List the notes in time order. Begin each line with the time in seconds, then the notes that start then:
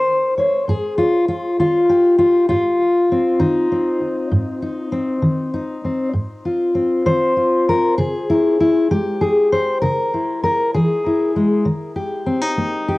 Already playing: D#4 A#4 C5
0.38 C#5
0.68 G#2 G#4
0.98 F4
1.28 F4
1.60 D#3 F4
1.89 G4
2.19 F4
2.49 G#2 F4
3.12 C4
3.40 D#3 D#4
3.72 C4
4.32 G#2
4.62 D#4
4.92 C4
5.22 D#3
5.54 D#4
5.85 C4
6.14 G#2
6.45 F4
6.75 C4
7.06 D#3 C5
7.37 F4
7.69 A#4
7.98 C#3 G#4
8.30 E4
8.60 E4
8.91 G#3 G4
9.21 G#4
9.52 C5
9.81 C#3 A#4
10.14 E4
10.43 A#4
10.74 E3 G#4
11.06 E4
11.36 G#3
11.65 D#3
11.96 G4
12.26 C4
12.41 D#4
12.57 A#3
12.88 G4